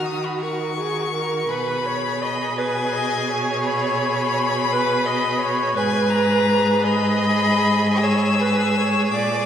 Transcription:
Already playing: D#3 F#4
0.06 D#6
0.25 B5
0.42 A#4 C#6
0.80 G#4
1.14 A#4
1.49 B2 G#4 B4 B5
1.86 C#5
2.22 D#5
2.56 B4 G#5
2.93 D#5
3.30 C#5
3.64 B5
4.72 B4
5.06 D#5
5.41 C#5
5.76 G#2 G#4 B4 G#5
6.11 A#5
6.82 D#5 B5
8.01 C#5 E6
8.41 B4
8.76 C#5
9.11 A#2 D5 D6

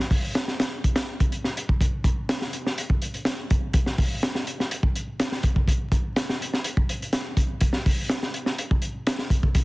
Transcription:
0.00 snare
0.11 kick, open hi-hat
0.35 snare, closed hi-hat
0.48 snare
0.60 snare, closed hi-hat
0.84 kick, closed hi-hat
0.96 snare, closed hi-hat
1.20 kick, closed hi-hat
1.32 closed hi-hat
1.44 snare
1.57 closed hi-hat
1.69 kick
1.81 kick, closed hi-hat
2.04 kick, closed hi-hat
2.29 snare, closed hi-hat
2.42 snare
2.53 closed hi-hat
2.66 snare
2.78 closed hi-hat
2.90 kick
3.02 closed hi-hat
3.14 closed hi-hat
3.25 snare, closed hi-hat
3.50 kick, closed hi-hat
3.73 kick, closed hi-hat
3.86 snare
3.98 kick, open hi-hat
4.23 snare, closed hi-hat
4.35 snare
4.47 closed hi-hat
4.60 snare
4.71 closed hi-hat
4.83 kick
4.96 closed hi-hat
5.20 snare, closed hi-hat
5.32 snare
5.43 kick, closed hi-hat
5.56 kick
5.68 kick, closed hi-hat
5.92 kick, closed hi-hat
6.16 snare, closed hi-hat
6.29 snare
6.42 closed hi-hat
6.53 snare
6.64 closed hi-hat
6.77 kick
6.89 closed hi-hat
7.02 closed hi-hat
7.13 snare, closed hi-hat
7.37 kick, closed hi-hat
7.61 kick, closed hi-hat
7.73 snare
7.86 kick, open hi-hat
8.09 snare, closed hi-hat
8.23 snare
8.34 closed hi-hat
8.46 snare
8.58 closed hi-hat
8.71 kick
8.82 closed hi-hat
9.07 snare, closed hi-hat
9.19 snare
9.30 kick, closed hi-hat
9.43 kick
9.55 kick, closed hi-hat

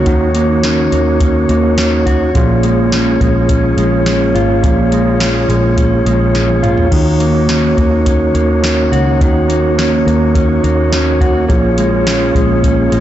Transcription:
Already playing: A#3 C#4 D#4 F#4 C#5
0.06 D#2 D#3, kick, closed hi-hat
0.35 A#3, closed hi-hat
0.63 C#4, snare, closed hi-hat
0.92 D#2 A#3, closed hi-hat
1.20 C#4, kick, closed hi-hat
1.49 D#2 A#3, closed hi-hat
1.78 C#4, snare, closed hi-hat
2.06 F#4, kick, closed hi-hat
2.35 A#1 A#2 F4 G#4, kick, closed hi-hat
2.63 G#3, closed hi-hat
2.92 C#4, snare, closed hi-hat
3.21 A#1 G#3, kick, closed hi-hat
3.49 C#4, kick, closed hi-hat
3.77 A#1 G#3, closed hi-hat
4.06 C#4, snare, closed hi-hat
4.34 G#1 F4, closed hi-hat
4.63 A#1 A#2, kick, closed hi-hat
4.92 G#3, closed hi-hat
5.20 C#4, snare, closed hi-hat
5.49 A#1 G#3, closed hi-hat
5.77 C#4, kick, closed hi-hat
6.05 A#1 G#3, closed hi-hat
6.34 C#4, snare, closed hi-hat
6.49 high tom
6.63 F4, closed hi-hat, mid tom
6.77 floor tom
6.91 D#2 D#3 A#3 D#4 F#4, kick, crash
7.20 A#3, closed hi-hat
7.49 C#4, snare, closed hi-hat
7.77 D#2 A#3, kick, closed hi-hat
8.06 C#4, kick, closed hi-hat
8.34 D#2 A#3, closed hi-hat
8.63 C#4, snare, closed hi-hat
8.92 C#2 F#4, closed hi-hat
9.21 D#2 D#3, kick, closed hi-hat
9.49 A#3, closed hi-hat
9.78 C#4, snare, closed hi-hat
10.06 D#2 A#3, closed hi-hat
10.35 C#4, kick, closed hi-hat
10.64 D#2 A#3, closed hi-hat
10.92 C#4, snare, closed hi-hat
11.21 F#4, kick, closed hi-hat
11.48 A#1 A#2 F4 G#4 C#5, kick, closed hi-hat
11.78 G#3, closed hi-hat
12.06 C#4, snare, closed hi-hat
12.35 A#1 G#3, kick, closed hi-hat
12.63 C#4, kick, closed hi-hat
12.92 A#1 G#3, closed hi-hat

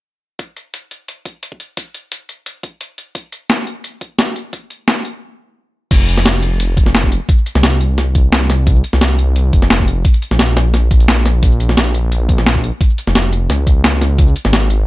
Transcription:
0.39 kick, closed hi-hat
0.57 closed hi-hat
0.74 closed hi-hat
0.91 closed hi-hat
1.08 closed hi-hat
1.26 kick, closed hi-hat
1.43 closed hi-hat
1.52 kick
1.60 closed hi-hat
1.77 kick, closed hi-hat
1.95 closed hi-hat
2.12 closed hi-hat
2.29 closed hi-hat
2.46 closed hi-hat
2.63 kick, closed hi-hat
2.81 closed hi-hat
2.98 closed hi-hat
3.15 kick, closed hi-hat
3.32 closed hi-hat
3.50 snare, closed hi-hat
3.67 closed hi-hat
3.84 closed hi-hat
4.01 kick, closed hi-hat
4.19 snare, closed hi-hat
4.28 kick
4.36 closed hi-hat
4.53 kick, closed hi-hat
4.70 closed hi-hat
4.88 snare, closed hi-hat
5.05 closed hi-hat
5.91 F1, kick, closed hi-hat, crash
6.00 shaker
6.08 closed hi-hat, shaker
6.18 snare, shaker
6.26 snare, closed hi-hat
6.43 closed hi-hat, shaker
6.60 closed hi-hat
6.77 kick, closed hi-hat, shaker
6.86 snare
6.95 snare, closed hi-hat
7.03 kick
7.12 closed hi-hat, shaker
7.29 kick, closed hi-hat
7.38 shaker
7.46 closed hi-hat, shaker
7.55 C2, snare, shaker
7.63 snare, closed hi-hat
7.81 closed hi-hat, shaker
7.98 snare, closed hi-hat
8.15 kick, closed hi-hat, shaker
8.32 snare, closed hi-hat
8.50 snare, closed hi-hat, shaker
8.67 kick, closed hi-hat
8.76 shaker
8.84 closed hi-hat, shaker
8.93 C2, snare, shaker
9.01 snare, closed hi-hat
9.19 closed hi-hat, shaker
9.36 closed hi-hat
9.53 F1, kick, closed hi-hat, shaker
9.62 snare
9.70 snare, closed hi-hat
9.79 kick
9.88 closed hi-hat, shaker
10.05 kick, closed hi-hat
10.14 closed hi-hat, shaker
10.22 closed hi-hat, shaker
10.31 A#1, snare, shaker
10.39 snare, closed hi-hat
10.57 snare, closed hi-hat, shaker
10.74 snare, closed hi-hat
10.91 A#1, kick, closed hi-hat, shaker
11.00 closed hi-hat
11.08 snare, closed hi-hat
11.26 snare, closed hi-hat, shaker
11.43 A#1, kick, closed hi-hat
11.52 shaker
11.60 closed hi-hat, shaker
11.69 snare, shaker
11.77 snare, closed hi-hat
11.95 closed hi-hat, shaker
12.12 closed hi-hat
12.29 kick, closed hi-hat, shaker
12.38 snare
12.46 snare, closed hi-hat
12.55 kick
12.64 closed hi-hat, shaker
12.81 kick, closed hi-hat
12.90 shaker
12.98 closed hi-hat, shaker
13.07 F1, snare, shaker
13.15 snare, closed hi-hat
13.33 closed hi-hat, shaker
13.50 C#2, snare, closed hi-hat
13.67 kick, closed hi-hat, shaker
13.84 snare, closed hi-hat
14.02 snare, closed hi-hat, shaker
14.19 kick, closed hi-hat
14.28 shaker
14.36 closed hi-hat, shaker
14.45 G#1, snare, shaker
14.53 snare, closed hi-hat
14.70 closed hi-hat, shaker

